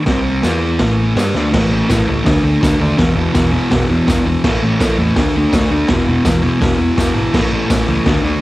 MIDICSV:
0, 0, Header, 1, 4, 480
1, 0, Start_track
1, 0, Tempo, 363196
1, 78, Time_signature, 4, 2, 24, 8
1, 11116, End_track
2, 0, Start_track
2, 0, Title_t, "Distorted electric guitar"
2, 0, Program_c, 0, 30
2, 79, Note_on_c, 0, 48, 92
2, 95, Note_on_c, 0, 55, 98
2, 104, Note_on_c, 0, 60, 109
2, 556, Note_off_c, 0, 48, 0
2, 564, Note_off_c, 0, 55, 0
2, 568, Note_off_c, 0, 60, 0
2, 571, Note_on_c, 0, 52, 90
2, 574, Note_on_c, 0, 59, 94
2, 589, Note_on_c, 0, 64, 102
2, 1044, Note_off_c, 0, 52, 0
2, 1045, Note_off_c, 0, 59, 0
2, 1053, Note_off_c, 0, 64, 0
2, 1062, Note_on_c, 0, 45, 96
2, 1079, Note_on_c, 0, 52, 97
2, 1097, Note_on_c, 0, 57, 98
2, 1525, Note_off_c, 0, 52, 0
2, 1530, Note_on_c, 0, 55, 96
2, 1531, Note_off_c, 0, 45, 0
2, 1533, Note_off_c, 0, 57, 0
2, 1539, Note_on_c, 0, 62, 96
2, 1551, Note_on_c, 0, 67, 94
2, 1764, Note_off_c, 0, 55, 0
2, 1769, Note_off_c, 0, 62, 0
2, 1775, Note_off_c, 0, 67, 0
2, 1784, Note_on_c, 0, 50, 81
2, 1788, Note_on_c, 0, 57, 80
2, 1804, Note_on_c, 0, 62, 87
2, 2006, Note_off_c, 0, 50, 0
2, 2011, Note_on_c, 0, 45, 91
2, 2014, Note_off_c, 0, 57, 0
2, 2022, Note_off_c, 0, 62, 0
2, 2029, Note_on_c, 0, 52, 106
2, 2034, Note_on_c, 0, 57, 109
2, 2250, Note_off_c, 0, 45, 0
2, 2261, Note_off_c, 0, 52, 0
2, 2265, Note_on_c, 0, 45, 83
2, 2272, Note_off_c, 0, 57, 0
2, 2277, Note_on_c, 0, 52, 95
2, 2288, Note_on_c, 0, 57, 94
2, 2486, Note_off_c, 0, 45, 0
2, 2495, Note_off_c, 0, 52, 0
2, 2502, Note_on_c, 0, 45, 112
2, 2506, Note_off_c, 0, 57, 0
2, 2510, Note_on_c, 0, 52, 106
2, 2522, Note_on_c, 0, 57, 118
2, 2737, Note_off_c, 0, 45, 0
2, 2745, Note_off_c, 0, 52, 0
2, 2753, Note_on_c, 0, 45, 97
2, 2759, Note_off_c, 0, 57, 0
2, 2761, Note_on_c, 0, 52, 80
2, 2775, Note_on_c, 0, 57, 101
2, 2957, Note_off_c, 0, 57, 0
2, 2964, Note_off_c, 0, 45, 0
2, 2968, Note_off_c, 0, 52, 0
2, 2970, Note_on_c, 0, 50, 105
2, 2973, Note_on_c, 0, 57, 102
2, 2993, Note_on_c, 0, 62, 100
2, 3195, Note_off_c, 0, 50, 0
2, 3205, Note_off_c, 0, 57, 0
2, 3207, Note_off_c, 0, 62, 0
2, 3211, Note_on_c, 0, 50, 90
2, 3221, Note_on_c, 0, 57, 98
2, 3223, Note_on_c, 0, 62, 91
2, 3444, Note_off_c, 0, 50, 0
2, 3455, Note_off_c, 0, 57, 0
2, 3459, Note_on_c, 0, 50, 108
2, 3462, Note_off_c, 0, 62, 0
2, 3471, Note_on_c, 0, 57, 103
2, 3478, Note_on_c, 0, 62, 110
2, 3674, Note_off_c, 0, 50, 0
2, 3686, Note_off_c, 0, 57, 0
2, 3690, Note_on_c, 0, 50, 79
2, 3701, Note_on_c, 0, 57, 79
2, 3702, Note_off_c, 0, 62, 0
2, 3718, Note_on_c, 0, 62, 82
2, 3919, Note_off_c, 0, 50, 0
2, 3921, Note_on_c, 0, 40, 97
2, 3925, Note_off_c, 0, 57, 0
2, 3934, Note_off_c, 0, 62, 0
2, 3945, Note_on_c, 0, 47, 101
2, 3953, Note_on_c, 0, 52, 113
2, 4151, Note_off_c, 0, 40, 0
2, 4154, Note_off_c, 0, 47, 0
2, 4167, Note_on_c, 0, 40, 87
2, 4169, Note_off_c, 0, 52, 0
2, 4170, Note_on_c, 0, 47, 83
2, 4185, Note_on_c, 0, 52, 83
2, 4395, Note_off_c, 0, 40, 0
2, 4410, Note_off_c, 0, 52, 0
2, 4411, Note_on_c, 0, 40, 98
2, 4412, Note_off_c, 0, 47, 0
2, 4426, Note_on_c, 0, 52, 121
2, 4428, Note_on_c, 0, 47, 119
2, 4640, Note_off_c, 0, 40, 0
2, 4650, Note_off_c, 0, 47, 0
2, 4652, Note_off_c, 0, 52, 0
2, 4656, Note_on_c, 0, 40, 86
2, 4666, Note_on_c, 0, 47, 98
2, 4668, Note_on_c, 0, 52, 91
2, 4881, Note_off_c, 0, 40, 0
2, 4885, Note_off_c, 0, 47, 0
2, 4896, Note_on_c, 0, 40, 107
2, 4900, Note_on_c, 0, 47, 106
2, 4903, Note_off_c, 0, 52, 0
2, 4919, Note_on_c, 0, 52, 106
2, 5125, Note_off_c, 0, 40, 0
2, 5141, Note_off_c, 0, 47, 0
2, 5141, Note_on_c, 0, 40, 91
2, 5151, Note_off_c, 0, 52, 0
2, 5156, Note_on_c, 0, 47, 92
2, 5167, Note_on_c, 0, 52, 93
2, 5364, Note_off_c, 0, 40, 0
2, 5368, Note_off_c, 0, 47, 0
2, 5380, Note_on_c, 0, 40, 110
2, 5381, Note_off_c, 0, 52, 0
2, 5384, Note_on_c, 0, 47, 100
2, 5397, Note_on_c, 0, 52, 110
2, 5619, Note_off_c, 0, 40, 0
2, 5630, Note_off_c, 0, 47, 0
2, 5635, Note_on_c, 0, 40, 90
2, 5643, Note_off_c, 0, 52, 0
2, 5646, Note_on_c, 0, 47, 84
2, 5659, Note_on_c, 0, 52, 90
2, 5851, Note_off_c, 0, 40, 0
2, 5856, Note_off_c, 0, 47, 0
2, 5863, Note_off_c, 0, 52, 0
2, 5870, Note_on_c, 0, 45, 97
2, 5877, Note_on_c, 0, 52, 113
2, 5885, Note_on_c, 0, 57, 108
2, 6101, Note_off_c, 0, 45, 0
2, 6111, Note_off_c, 0, 52, 0
2, 6117, Note_on_c, 0, 45, 94
2, 6120, Note_off_c, 0, 57, 0
2, 6127, Note_on_c, 0, 52, 94
2, 6136, Note_on_c, 0, 57, 87
2, 6332, Note_off_c, 0, 45, 0
2, 6341, Note_off_c, 0, 52, 0
2, 6347, Note_off_c, 0, 57, 0
2, 6348, Note_on_c, 0, 45, 108
2, 6357, Note_on_c, 0, 52, 116
2, 6363, Note_on_c, 0, 57, 127
2, 6571, Note_off_c, 0, 45, 0
2, 6583, Note_off_c, 0, 52, 0
2, 6587, Note_on_c, 0, 45, 82
2, 6593, Note_off_c, 0, 57, 0
2, 6599, Note_on_c, 0, 52, 96
2, 6609, Note_on_c, 0, 57, 108
2, 6805, Note_off_c, 0, 45, 0
2, 6811, Note_off_c, 0, 52, 0
2, 6816, Note_off_c, 0, 57, 0
2, 6830, Note_on_c, 0, 50, 102
2, 6840, Note_on_c, 0, 57, 106
2, 6853, Note_on_c, 0, 62, 104
2, 7070, Note_off_c, 0, 50, 0
2, 7079, Note_off_c, 0, 57, 0
2, 7086, Note_on_c, 0, 50, 84
2, 7088, Note_off_c, 0, 62, 0
2, 7095, Note_on_c, 0, 57, 107
2, 7104, Note_on_c, 0, 62, 109
2, 7303, Note_off_c, 0, 50, 0
2, 7303, Note_off_c, 0, 57, 0
2, 7315, Note_off_c, 0, 62, 0
2, 7319, Note_on_c, 0, 50, 104
2, 7319, Note_on_c, 0, 57, 106
2, 7331, Note_on_c, 0, 62, 111
2, 7533, Note_off_c, 0, 50, 0
2, 7541, Note_off_c, 0, 57, 0
2, 7549, Note_on_c, 0, 50, 88
2, 7554, Note_off_c, 0, 62, 0
2, 7557, Note_on_c, 0, 57, 86
2, 7570, Note_on_c, 0, 62, 91
2, 7764, Note_off_c, 0, 50, 0
2, 7768, Note_off_c, 0, 57, 0
2, 7775, Note_off_c, 0, 62, 0
2, 7794, Note_on_c, 0, 40, 114
2, 7808, Note_on_c, 0, 47, 104
2, 7816, Note_on_c, 0, 52, 125
2, 8017, Note_off_c, 0, 40, 0
2, 8032, Note_off_c, 0, 47, 0
2, 8033, Note_on_c, 0, 40, 96
2, 8044, Note_off_c, 0, 52, 0
2, 8048, Note_on_c, 0, 47, 104
2, 8060, Note_on_c, 0, 52, 103
2, 8253, Note_off_c, 0, 40, 0
2, 8268, Note_off_c, 0, 47, 0
2, 8269, Note_on_c, 0, 40, 105
2, 8277, Note_off_c, 0, 52, 0
2, 8284, Note_on_c, 0, 47, 114
2, 8293, Note_on_c, 0, 52, 116
2, 8482, Note_off_c, 0, 40, 0
2, 8492, Note_off_c, 0, 47, 0
2, 8497, Note_on_c, 0, 40, 86
2, 8503, Note_off_c, 0, 52, 0
2, 8508, Note_on_c, 0, 47, 91
2, 8519, Note_on_c, 0, 52, 104
2, 8710, Note_off_c, 0, 40, 0
2, 8723, Note_off_c, 0, 47, 0
2, 8726, Note_on_c, 0, 40, 106
2, 8734, Note_off_c, 0, 52, 0
2, 8738, Note_on_c, 0, 47, 108
2, 8750, Note_on_c, 0, 52, 118
2, 8945, Note_off_c, 0, 40, 0
2, 8950, Note_off_c, 0, 47, 0
2, 8957, Note_off_c, 0, 52, 0
2, 8961, Note_on_c, 0, 40, 85
2, 8966, Note_on_c, 0, 47, 88
2, 8973, Note_on_c, 0, 52, 97
2, 9194, Note_off_c, 0, 40, 0
2, 9209, Note_off_c, 0, 47, 0
2, 9209, Note_on_c, 0, 40, 108
2, 9222, Note_off_c, 0, 52, 0
2, 9225, Note_on_c, 0, 47, 104
2, 9238, Note_on_c, 0, 52, 106
2, 9437, Note_off_c, 0, 40, 0
2, 9449, Note_off_c, 0, 47, 0
2, 9449, Note_off_c, 0, 52, 0
2, 9453, Note_on_c, 0, 40, 74
2, 9465, Note_on_c, 0, 47, 78
2, 9465, Note_on_c, 0, 52, 92
2, 9673, Note_off_c, 0, 40, 0
2, 9678, Note_off_c, 0, 47, 0
2, 9679, Note_off_c, 0, 52, 0
2, 9684, Note_on_c, 0, 45, 103
2, 9692, Note_on_c, 0, 52, 107
2, 9701, Note_on_c, 0, 57, 108
2, 9915, Note_off_c, 0, 45, 0
2, 9918, Note_off_c, 0, 52, 0
2, 9929, Note_off_c, 0, 57, 0
2, 9931, Note_on_c, 0, 45, 84
2, 9934, Note_on_c, 0, 52, 89
2, 9945, Note_on_c, 0, 57, 92
2, 10150, Note_off_c, 0, 45, 0
2, 10155, Note_off_c, 0, 52, 0
2, 10165, Note_on_c, 0, 45, 105
2, 10166, Note_off_c, 0, 57, 0
2, 10171, Note_on_c, 0, 52, 109
2, 10182, Note_on_c, 0, 57, 106
2, 10388, Note_off_c, 0, 45, 0
2, 10389, Note_off_c, 0, 52, 0
2, 10404, Note_on_c, 0, 45, 83
2, 10405, Note_on_c, 0, 52, 89
2, 10406, Note_off_c, 0, 57, 0
2, 10422, Note_on_c, 0, 57, 91
2, 10627, Note_off_c, 0, 45, 0
2, 10628, Note_off_c, 0, 52, 0
2, 10636, Note_off_c, 0, 57, 0
2, 10638, Note_on_c, 0, 50, 96
2, 10653, Note_on_c, 0, 57, 98
2, 10666, Note_on_c, 0, 62, 107
2, 10850, Note_off_c, 0, 50, 0
2, 10866, Note_on_c, 0, 50, 97
2, 10870, Note_off_c, 0, 57, 0
2, 10875, Note_off_c, 0, 62, 0
2, 10886, Note_on_c, 0, 57, 102
2, 10891, Note_on_c, 0, 62, 105
2, 11095, Note_off_c, 0, 50, 0
2, 11098, Note_off_c, 0, 57, 0
2, 11108, Note_off_c, 0, 62, 0
2, 11116, End_track
3, 0, Start_track
3, 0, Title_t, "Picked electric bass"
3, 0, Program_c, 1, 34
3, 93, Note_on_c, 1, 36, 82
3, 537, Note_off_c, 1, 36, 0
3, 576, Note_on_c, 1, 40, 88
3, 1020, Note_off_c, 1, 40, 0
3, 1057, Note_on_c, 1, 33, 87
3, 1502, Note_off_c, 1, 33, 0
3, 1532, Note_on_c, 1, 43, 92
3, 1756, Note_off_c, 1, 43, 0
3, 1764, Note_on_c, 1, 38, 80
3, 1992, Note_off_c, 1, 38, 0
3, 2028, Note_on_c, 1, 33, 87
3, 2170, Note_off_c, 1, 33, 0
3, 2240, Note_on_c, 1, 33, 95
3, 2391, Note_off_c, 1, 33, 0
3, 2510, Note_on_c, 1, 33, 92
3, 2652, Note_off_c, 1, 33, 0
3, 2741, Note_on_c, 1, 37, 91
3, 2886, Note_off_c, 1, 37, 0
3, 2994, Note_on_c, 1, 38, 84
3, 3135, Note_off_c, 1, 38, 0
3, 3215, Note_on_c, 1, 38, 89
3, 3362, Note_off_c, 1, 38, 0
3, 3476, Note_on_c, 1, 38, 88
3, 3616, Note_off_c, 1, 38, 0
3, 3700, Note_on_c, 1, 39, 85
3, 3845, Note_off_c, 1, 39, 0
3, 3947, Note_on_c, 1, 28, 88
3, 4090, Note_off_c, 1, 28, 0
3, 4174, Note_on_c, 1, 28, 102
3, 4321, Note_off_c, 1, 28, 0
3, 4429, Note_on_c, 1, 28, 88
3, 4717, Note_off_c, 1, 28, 0
3, 4906, Note_on_c, 1, 28, 95
3, 5049, Note_off_c, 1, 28, 0
3, 5138, Note_on_c, 1, 28, 91
3, 5283, Note_off_c, 1, 28, 0
3, 5392, Note_on_c, 1, 28, 93
3, 5533, Note_off_c, 1, 28, 0
3, 5617, Note_on_c, 1, 40, 82
3, 5762, Note_off_c, 1, 40, 0
3, 5870, Note_on_c, 1, 33, 100
3, 6011, Note_off_c, 1, 33, 0
3, 6115, Note_on_c, 1, 33, 99
3, 6254, Note_off_c, 1, 33, 0
3, 6349, Note_on_c, 1, 33, 96
3, 6490, Note_off_c, 1, 33, 0
3, 6584, Note_on_c, 1, 40, 99
3, 6726, Note_off_c, 1, 40, 0
3, 6824, Note_on_c, 1, 38, 87
3, 6965, Note_off_c, 1, 38, 0
3, 7070, Note_on_c, 1, 38, 88
3, 7209, Note_off_c, 1, 38, 0
3, 7301, Note_on_c, 1, 38, 90
3, 7444, Note_off_c, 1, 38, 0
3, 7546, Note_on_c, 1, 38, 90
3, 7686, Note_off_c, 1, 38, 0
3, 7784, Note_on_c, 1, 28, 85
3, 7925, Note_off_c, 1, 28, 0
3, 8014, Note_on_c, 1, 28, 98
3, 8157, Note_off_c, 1, 28, 0
3, 8263, Note_on_c, 1, 28, 97
3, 8549, Note_off_c, 1, 28, 0
3, 8746, Note_on_c, 1, 28, 91
3, 8885, Note_off_c, 1, 28, 0
3, 8971, Note_on_c, 1, 28, 99
3, 9115, Note_off_c, 1, 28, 0
3, 9219, Note_on_c, 1, 28, 97
3, 9360, Note_off_c, 1, 28, 0
3, 9447, Note_on_c, 1, 32, 89
3, 9591, Note_off_c, 1, 32, 0
3, 9701, Note_on_c, 1, 33, 86
3, 9841, Note_off_c, 1, 33, 0
3, 9935, Note_on_c, 1, 33, 94
3, 10077, Note_off_c, 1, 33, 0
3, 10181, Note_on_c, 1, 33, 102
3, 10321, Note_off_c, 1, 33, 0
3, 10399, Note_on_c, 1, 37, 94
3, 10545, Note_off_c, 1, 37, 0
3, 10653, Note_on_c, 1, 38, 93
3, 10795, Note_off_c, 1, 38, 0
3, 10874, Note_on_c, 1, 38, 88
3, 11021, Note_off_c, 1, 38, 0
3, 11116, End_track
4, 0, Start_track
4, 0, Title_t, "Drums"
4, 80, Note_on_c, 9, 46, 51
4, 82, Note_on_c, 9, 38, 119
4, 94, Note_on_c, 9, 36, 102
4, 213, Note_off_c, 9, 46, 0
4, 214, Note_off_c, 9, 38, 0
4, 226, Note_off_c, 9, 36, 0
4, 569, Note_on_c, 9, 46, 55
4, 571, Note_on_c, 9, 38, 104
4, 585, Note_on_c, 9, 54, 93
4, 702, Note_off_c, 9, 46, 0
4, 703, Note_off_c, 9, 38, 0
4, 718, Note_off_c, 9, 54, 0
4, 1044, Note_on_c, 9, 46, 61
4, 1045, Note_on_c, 9, 38, 124
4, 1061, Note_on_c, 9, 36, 107
4, 1176, Note_off_c, 9, 46, 0
4, 1177, Note_off_c, 9, 38, 0
4, 1193, Note_off_c, 9, 36, 0
4, 1541, Note_on_c, 9, 46, 64
4, 1542, Note_on_c, 9, 38, 110
4, 1576, Note_on_c, 9, 54, 107
4, 1673, Note_off_c, 9, 46, 0
4, 1674, Note_off_c, 9, 38, 0
4, 1708, Note_off_c, 9, 54, 0
4, 1781, Note_on_c, 9, 38, 58
4, 1913, Note_off_c, 9, 38, 0
4, 2032, Note_on_c, 9, 36, 115
4, 2033, Note_on_c, 9, 49, 112
4, 2034, Note_on_c, 9, 38, 107
4, 2165, Note_off_c, 9, 36, 0
4, 2165, Note_off_c, 9, 49, 0
4, 2166, Note_off_c, 9, 38, 0
4, 2504, Note_on_c, 9, 46, 61
4, 2505, Note_on_c, 9, 38, 112
4, 2511, Note_on_c, 9, 36, 116
4, 2519, Note_on_c, 9, 54, 104
4, 2636, Note_off_c, 9, 46, 0
4, 2638, Note_off_c, 9, 38, 0
4, 2643, Note_off_c, 9, 36, 0
4, 2652, Note_off_c, 9, 54, 0
4, 2986, Note_on_c, 9, 46, 66
4, 2987, Note_on_c, 9, 38, 120
4, 2992, Note_on_c, 9, 36, 121
4, 3118, Note_off_c, 9, 46, 0
4, 3119, Note_off_c, 9, 38, 0
4, 3124, Note_off_c, 9, 36, 0
4, 3473, Note_on_c, 9, 46, 66
4, 3474, Note_on_c, 9, 36, 118
4, 3474, Note_on_c, 9, 38, 110
4, 3494, Note_on_c, 9, 54, 97
4, 3605, Note_off_c, 9, 46, 0
4, 3606, Note_off_c, 9, 36, 0
4, 3606, Note_off_c, 9, 38, 0
4, 3626, Note_off_c, 9, 54, 0
4, 3943, Note_on_c, 9, 46, 65
4, 3944, Note_on_c, 9, 38, 123
4, 3950, Note_on_c, 9, 36, 119
4, 4075, Note_off_c, 9, 46, 0
4, 4077, Note_off_c, 9, 38, 0
4, 4083, Note_off_c, 9, 36, 0
4, 4420, Note_on_c, 9, 46, 59
4, 4421, Note_on_c, 9, 38, 111
4, 4426, Note_on_c, 9, 54, 92
4, 4430, Note_on_c, 9, 36, 115
4, 4552, Note_off_c, 9, 46, 0
4, 4553, Note_off_c, 9, 38, 0
4, 4558, Note_off_c, 9, 54, 0
4, 4562, Note_off_c, 9, 36, 0
4, 4904, Note_on_c, 9, 46, 70
4, 4906, Note_on_c, 9, 38, 127
4, 4913, Note_on_c, 9, 36, 118
4, 5037, Note_off_c, 9, 46, 0
4, 5038, Note_off_c, 9, 38, 0
4, 5045, Note_off_c, 9, 36, 0
4, 5389, Note_on_c, 9, 46, 71
4, 5390, Note_on_c, 9, 38, 112
4, 5393, Note_on_c, 9, 36, 127
4, 5415, Note_on_c, 9, 54, 96
4, 5521, Note_off_c, 9, 46, 0
4, 5522, Note_off_c, 9, 38, 0
4, 5525, Note_off_c, 9, 36, 0
4, 5547, Note_off_c, 9, 54, 0
4, 5870, Note_on_c, 9, 36, 121
4, 5871, Note_on_c, 9, 49, 95
4, 5872, Note_on_c, 9, 38, 118
4, 6002, Note_off_c, 9, 36, 0
4, 6003, Note_off_c, 9, 49, 0
4, 6005, Note_off_c, 9, 38, 0
4, 6347, Note_on_c, 9, 46, 68
4, 6349, Note_on_c, 9, 36, 116
4, 6349, Note_on_c, 9, 38, 118
4, 6357, Note_on_c, 9, 54, 90
4, 6479, Note_off_c, 9, 46, 0
4, 6481, Note_off_c, 9, 38, 0
4, 6482, Note_off_c, 9, 36, 0
4, 6489, Note_off_c, 9, 54, 0
4, 6821, Note_on_c, 9, 46, 69
4, 6822, Note_on_c, 9, 38, 127
4, 6826, Note_on_c, 9, 36, 123
4, 6953, Note_off_c, 9, 46, 0
4, 6955, Note_off_c, 9, 38, 0
4, 6958, Note_off_c, 9, 36, 0
4, 7307, Note_on_c, 9, 36, 117
4, 7307, Note_on_c, 9, 46, 61
4, 7309, Note_on_c, 9, 38, 123
4, 7315, Note_on_c, 9, 54, 98
4, 7439, Note_off_c, 9, 36, 0
4, 7439, Note_off_c, 9, 46, 0
4, 7441, Note_off_c, 9, 38, 0
4, 7448, Note_off_c, 9, 54, 0
4, 7773, Note_on_c, 9, 46, 61
4, 7775, Note_on_c, 9, 38, 127
4, 7782, Note_on_c, 9, 36, 117
4, 7906, Note_off_c, 9, 46, 0
4, 7907, Note_off_c, 9, 38, 0
4, 7914, Note_off_c, 9, 36, 0
4, 8258, Note_on_c, 9, 46, 65
4, 8259, Note_on_c, 9, 38, 118
4, 8263, Note_on_c, 9, 36, 110
4, 8271, Note_on_c, 9, 54, 92
4, 8390, Note_off_c, 9, 46, 0
4, 8391, Note_off_c, 9, 38, 0
4, 8395, Note_off_c, 9, 36, 0
4, 8403, Note_off_c, 9, 54, 0
4, 8744, Note_on_c, 9, 36, 121
4, 8744, Note_on_c, 9, 46, 66
4, 8746, Note_on_c, 9, 38, 123
4, 8876, Note_off_c, 9, 36, 0
4, 8877, Note_off_c, 9, 46, 0
4, 8878, Note_off_c, 9, 38, 0
4, 9220, Note_on_c, 9, 46, 65
4, 9221, Note_on_c, 9, 38, 118
4, 9222, Note_on_c, 9, 36, 113
4, 9254, Note_on_c, 9, 54, 113
4, 9352, Note_off_c, 9, 46, 0
4, 9353, Note_off_c, 9, 38, 0
4, 9354, Note_off_c, 9, 36, 0
4, 9386, Note_off_c, 9, 54, 0
4, 9699, Note_on_c, 9, 36, 123
4, 9703, Note_on_c, 9, 49, 108
4, 9705, Note_on_c, 9, 38, 127
4, 9832, Note_off_c, 9, 36, 0
4, 9835, Note_off_c, 9, 49, 0
4, 9837, Note_off_c, 9, 38, 0
4, 10179, Note_on_c, 9, 36, 119
4, 10179, Note_on_c, 9, 54, 117
4, 10180, Note_on_c, 9, 46, 69
4, 10182, Note_on_c, 9, 38, 111
4, 10312, Note_off_c, 9, 36, 0
4, 10312, Note_off_c, 9, 54, 0
4, 10313, Note_off_c, 9, 46, 0
4, 10314, Note_off_c, 9, 38, 0
4, 10649, Note_on_c, 9, 46, 70
4, 10651, Note_on_c, 9, 38, 127
4, 10656, Note_on_c, 9, 36, 122
4, 10782, Note_off_c, 9, 46, 0
4, 10783, Note_off_c, 9, 38, 0
4, 10788, Note_off_c, 9, 36, 0
4, 11116, End_track
0, 0, End_of_file